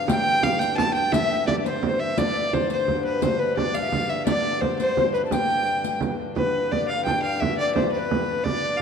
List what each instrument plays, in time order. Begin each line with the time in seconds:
Already playing: harmonium G2 D3
0.08 recorder G5, fiddle G5, riq, frame drum
0.27 recorder G5
0.43 fiddle F5, recorder F5, frame drum
0.59 fiddle G5, recorder G5, riq
0.77 fiddle A5, frame drum
0.94 fiddle G5, riq
1.12 fiddle E5, recorder E5, riq, frame drum
1.47 fiddle D5, recorder D5, frame drum
1.64 recorder C5, fiddle C5, riq, frame drum
1.83 frame drum
2.00 fiddle E5
2.16 harmonium G2 D3, recorder D5, fiddle D5, riq, frame drum
2.53 fiddle C5, frame drum
2.70 recorder C5, fiddle C5, riq
2.88 frame drum
3.04 fiddle B4, recorder B4
3.22 recorder C5, fiddle C5, riq, frame drum
3.39 fiddle B4, recorder B4
3.57 fiddle D5, recorder D5, frame drum
3.75 fiddle F5, recorder F5, riq
3.82 recorder E5
3.89 recorder F5, frame drum
4.09 fiddle E5, riq
4.26 fiddle D5, recorder D5, riq, frame drum
4.61 fiddle C5, frame drum
4.79 fiddle C5, recorder C5, riq
4.97 recorder C5, frame drum
5.14 fiddle B4, recorder B4, riq
5.25 recorder A5
5.31 fiddle G5, recorder G5, riq, frame drum
5.49 riq
5.66 riq
5.84 riq, frame drum
6.01 riq, frame drum
6.20 frame drum
6.36 harmonium G2 D3, fiddle B4, recorder C5, frame drum
6.41 recorder B4
6.72 fiddle D5, recorder D5, frame drum
6.88 fiddle F5, recorder F5
7.05 fiddle G5, recorder A5, frame drum
7.12 recorder G5
7.22 fiddle F5
7.40 fiddle E5, recorder E5, frame drum
7.57 fiddle D5, recorder D5
7.75 fiddle C5, frame drum
7.92 fiddle B4, recorder C5
7.99 recorder B4
8.11 frame drum
8.44 fiddle D5, recorder D5, frame drum
8.77 fiddle F5